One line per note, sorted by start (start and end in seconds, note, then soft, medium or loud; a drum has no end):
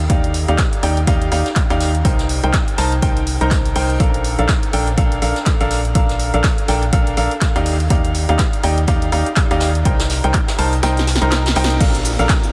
0.10 0.46 D#2 medium
0.10 0.45 D#4 medium
0.10 0.45 G4 medium
0.10 0.45 D5 medium
0.10 0.45 F5 medium
0.10 kick loud
0.10 closed hi-hat medium
0.24 closed hi-hat soft
0.34 closed hi-hat medium
0.34 open hi-hat loud
0.48 0.56 D#2 medium
0.48 0.58 D#4 medium
0.48 0.58 G4 medium
0.48 0.58 D5 medium
0.48 0.58 F5 medium
0.48 closed hi-hat soft
0.58 kick loud
0.58 snare loud
0.58 clap loud
0.58 closed hi-hat medium
0.73 closed hi-hat soft
0.83 1.05 D#2 loud
0.83 0.97 D#4 medium
0.83 0.97 G4 medium
0.83 0.97 D5 medium
0.83 0.97 G5 loud
0.83 closed hi-hat medium
0.83 open hi-hat loud
0.97 closed hi-hat soft
1.07 1.30 D#2 loud
1.07 1.27 D#4 medium
1.07 1.27 G4 medium
1.07 1.27 D5 medium
1.07 1.27 F5 loud
1.07 kick loud
1.07 closed hi-hat medium
1.22 closed hi-hat soft
1.32 1.43 D#2 medium
1.32 1.46 D#4 medium
1.32 1.46 G4 medium
1.32 1.46 D5 medium
1.32 1.46 F5 medium
1.32 closed hi-hat medium
1.32 open hi-hat loud
1.46 snare soft
1.46 closed hi-hat soft
1.56 kick loud
1.56 snare loud
1.56 clap loud
1.56 closed hi-hat medium
1.70 2.03 D#2 medium
1.70 1.88 D#4 medium
1.70 1.88 G4 medium
1.70 1.88 D5 medium
1.70 1.88 F5 loud
1.70 closed hi-hat soft
1.81 snare soft
1.81 closed hi-hat medium
1.81 open hi-hat loud
1.95 closed hi-hat soft
2.05 2.41 C2 medium
2.05 2.40 D#4 medium
2.05 2.40 A#4 medium
2.05 2.40 C5 medium
2.05 2.40 G5 medium
2.05 kick loud
2.05 closed hi-hat medium
2.19 snare soft
2.19 closed hi-hat soft
2.29 closed hi-hat medium
2.29 open hi-hat loud
2.44 2.51 C2 medium
2.44 2.53 D#4 medium
2.44 2.53 A#4 medium
2.44 2.53 C5 medium
2.44 2.53 G5 medium
2.44 closed hi-hat soft
2.53 kick loud
2.53 snare loud
2.53 clap loud
2.53 closed hi-hat medium
2.68 closed hi-hat soft
2.78 3.00 C2 loud
2.78 2.92 D#4 medium
2.78 2.92 A#4 medium
2.78 2.92 C5 medium
2.78 2.92 A5 medium
2.78 snare medium
2.78 closed hi-hat medium
2.78 open hi-hat loud
2.92 closed hi-hat soft
3.02 3.38 C2 loud
3.02 3.22 D#4 medium
3.02 3.22 A#4 medium
3.02 3.22 C5 medium
3.02 3.22 G5 loud
3.02 kick loud
3.02 closed hi-hat medium
3.17 closed hi-hat soft
3.27 closed hi-hat medium
3.27 open hi-hat loud
3.41 3.74 C2 loud
3.41 3.73 D#4 medium
3.41 3.73 A#4 medium
3.41 3.73 C5 medium
3.41 3.73 A#5 medium
3.41 closed hi-hat soft
3.51 kick loud
3.51 snare loud
3.51 clap loud
3.51 closed hi-hat medium
3.65 closed hi-hat soft
3.76 3.98 C2 medium
3.76 3.98 D#4 medium
3.76 3.98 A#4 medium
3.76 3.98 C5 medium
3.76 3.98 G5 loud
3.76 open hi-hat loud
3.76 open hi-hat medium
3.90 closed hi-hat soft
3.99 4.36 A#1 loud
3.99 4.35 D4 medium
3.99 4.35 A4 medium
3.99 4.35 A#4 medium
3.99 4.35 F5 medium
3.99 kick loud
3.99 closed hi-hat medium
4.14 closed hi-hat soft
4.24 closed hi-hat medium
4.24 open hi-hat loud
4.39 4.46 A#1 medium
4.39 4.49 D4 medium
4.39 4.49 A4 medium
4.39 4.49 A#4 medium
4.39 4.49 F5 medium
4.39 closed hi-hat soft
4.48 kick loud
4.48 snare loud
4.48 clap loud
4.48 closed hi-hat medium
4.63 closed hi-hat soft
4.73 4.96 A#1 medium
4.73 4.87 D4 medium
4.73 4.87 A4 medium
4.73 4.87 A#4 medium
4.73 4.87 G5 medium
4.73 closed hi-hat medium
4.73 open hi-hat loud
4.87 closed hi-hat soft
4.98 5.20 A#1 loud
4.98 5.17 D4 loud
4.98 5.17 A4 medium
4.98 5.17 A#4 medium
4.98 5.17 F5 loud
4.98 kick loud
4.98 closed hi-hat medium
5.12 closed hi-hat soft
5.22 5.33 A#1 loud
5.22 5.36 D4 medium
5.22 5.36 A4 medium
5.22 5.36 A#4 medium
5.22 5.36 F5 loud
5.22 closed hi-hat medium
5.22 open hi-hat loud
5.36 snare soft
5.36 closed hi-hat soft
5.45 kick loud
5.45 snare loud
5.45 clap loud
5.45 closed hi-hat medium
5.61 5.93 A#1 loud
5.61 5.79 D4 loud
5.61 5.79 A4 medium
5.61 5.79 A#4 medium
5.61 5.79 F5 loud
5.61 closed hi-hat soft
5.71 snare soft
5.71 closed hi-hat medium
5.71 open hi-hat loud
5.85 closed hi-hat soft
5.95 6.31 A#1 medium
5.95 6.30 D4 medium
5.95 6.30 A4 medium
5.95 6.30 A#4 medium
5.95 6.30 F5 medium
5.95 kick loud
5.95 closed hi-hat medium
6.09 snare soft
6.09 closed hi-hat soft
6.19 closed hi-hat medium
6.19 open hi-hat loud
6.34 6.42 A#1 medium
6.34 6.44 D4 medium
6.34 6.44 A4 medium
6.34 6.44 A#4 medium
6.34 6.44 F5 medium
6.34 closed hi-hat soft
6.44 kick loud
6.44 snare loud
6.44 clap loud
6.44 closed hi-hat medium
6.58 closed hi-hat soft
6.68 6.91 A#1 loud
6.68 6.82 D4 medium
6.68 6.82 A4 medium
6.68 6.82 A#4 medium
6.68 6.82 G5 medium
6.68 snare soft
6.68 closed hi-hat medium
6.68 open hi-hat loud
6.83 closed hi-hat soft
6.92 7.15 A#1 loud
6.92 7.13 D4 medium
6.92 7.13 A4 medium
6.92 7.13 A#4 medium
6.92 7.13 F5 loud
6.92 kick loud
6.92 closed hi-hat medium
7.07 closed hi-hat soft
7.17 7.28 A#1 loud
7.17 7.31 D4 medium
7.17 7.31 A4 medium
7.17 7.31 A#4 medium
7.17 7.31 F5 loud
7.17 closed hi-hat medium
7.17 open hi-hat loud
7.31 closed hi-hat soft
7.41 kick loud
7.41 snare loud
7.41 clap loud
7.41 closed hi-hat medium
7.56 7.88 D#2 loud
7.56 7.74 D#4 loud
7.56 7.74 G4 medium
7.56 7.74 D5 medium
7.56 7.74 F5 loud
7.56 closed hi-hat soft
7.65 open hi-hat medium
7.65 open hi-hat loud
7.80 closed hi-hat soft
7.90 8.26 D#2 loud
7.90 8.26 D#4 medium
7.90 8.26 G4 medium
7.90 8.26 D5 medium
7.90 8.26 F5 medium
7.90 kick loud
7.90 closed hi-hat medium
8.05 closed hi-hat soft
8.15 closed hi-hat medium
8.15 open hi-hat loud
8.29 8.37 D#2 medium
8.29 8.39 D#4 medium
8.29 8.39 G4 medium
8.29 8.39 D5 medium
8.29 8.39 F5 medium
8.29 closed hi-hat soft
8.39 kick loud
8.39 snare loud
8.39 clap loud
8.39 closed hi-hat medium
8.53 closed hi-hat soft
8.63 8.86 D#2 loud
8.63 8.77 D#4 medium
8.63 8.77 G4 medium
8.63 8.77 D5 medium
8.63 8.77 G5 medium
8.63 closed hi-hat medium
8.63 open hi-hat loud
8.78 closed hi-hat soft
8.87 9.10 D#2 loud
8.87 9.08 D#4 loud
8.87 9.08 G4 medium
8.87 9.08 D5 medium
8.87 9.08 F5 loud
8.87 kick loud
8.87 closed hi-hat medium
9.02 closed hi-hat soft
9.12 9.23 D#2 loud
9.12 9.26 D#4 medium
9.12 9.26 G4 medium
9.12 9.26 D5 medium
9.12 9.26 F5 loud
9.12 open hi-hat loud
9.26 closed hi-hat soft
9.36 kick loud
9.36 snare loud
9.36 clap loud
9.36 closed hi-hat medium
9.51 9.83 D#2 loud
9.51 9.69 D#4 loud
9.51 9.69 G4 medium
9.51 9.69 D5 medium
9.51 9.69 F5 loud
9.51 closed hi-hat soft
9.60 snare loud
9.60 closed hi-hat medium
9.60 open hi-hat medium
9.75 closed hi-hat soft
9.85 10.21 C2 loud
9.85 10.21 D#4 medium
9.85 10.21 A#4 medium
9.85 10.21 C5 medium
9.85 10.21 G5 medium
9.85 kick loud
9.85 closed hi-hat medium
9.99 snare loud
9.99 closed hi-hat medium
9.99 closed hi-hat soft
10.10 snare loud
10.10 closed hi-hat medium
10.10 open hi-hat loud
10.24 10.32 C2 loud
10.24 10.34 D#4 medium
10.24 10.34 A#4 medium
10.24 10.34 C5 medium
10.24 10.34 G5 medium
10.24 closed hi-hat soft
10.33 kick loud
10.33 clap loud
10.33 closed hi-hat medium
10.48 snare loud
10.48 closed hi-hat medium
10.48 closed hi-hat soft
10.59 10.81 C2 loud
10.59 10.72 D#4 medium
10.59 10.72 A#4 medium
10.59 10.72 C5 medium
10.59 10.72 A5 loud
10.59 open hi-hat loud
10.72 closed hi-hat medium
10.72 closed hi-hat soft
10.83 11.19 C2 loud
10.83 11.03 D#4 loud
10.83 11.03 A#4 medium
10.83 11.03 C5 medium
10.83 11.03 G5 loud
10.83 snare medium
10.83 closed hi-hat medium
10.83 closed hi-hat loud
10.97 snare medium
10.97 closed hi-hat soft
11.07 snare loud
11.07 closed hi-hat medium
11.07 open hi-hat loud
11.16 snare medium
11.22 11.54 C2 loud
11.22 11.54 D#4 medium
11.22 11.54 A#4 medium
11.22 11.54 C5 medium
11.22 11.54 A#5 medium
11.22 closed hi-hat soft
11.31 snare medium
11.31 snare loud
11.31 clap loud
11.31 closed hi-hat medium
11.46 snare loud
11.46 closed hi-hat soft
11.46 closed hi-hat medium
11.48 snare medium
11.55 11.79 C2 loud
11.55 11.78 D#4 medium
11.55 11.78 A#4 medium
11.55 11.78 C5 medium
11.55 11.78 G5 loud
11.55 snare loud
11.55 closed hi-hat medium
11.55 open hi-hat loud
11.64 snare loud
11.70 closed hi-hat soft
11.80 12.16 A#1 loud
11.80 12.16 D4 medium
11.80 12.16 A4 medium
11.80 12.16 A#4 medium
11.80 12.16 F5 medium
11.80 kick loud
11.80 closed hi-hat medium
11.80 crash loud
11.80 shaker soft
11.95 closed hi-hat soft
11.95 shaker soft
12.05 closed hi-hat medium
12.05 open hi-hat loud
12.05 shaker medium
12.19 12.27 A#1 loud
12.19 12.29 D4 medium
12.19 12.29 A4 medium
12.19 12.29 A#4 medium
12.19 12.29 F5 medium
12.19 closed hi-hat soft
12.19 shaker soft
12.29 kick loud
12.29 snare loud
12.29 clap loud
12.29 closed hi-hat medium
12.29 shaker soft
12.44 closed hi-hat soft
12.44 shaker soft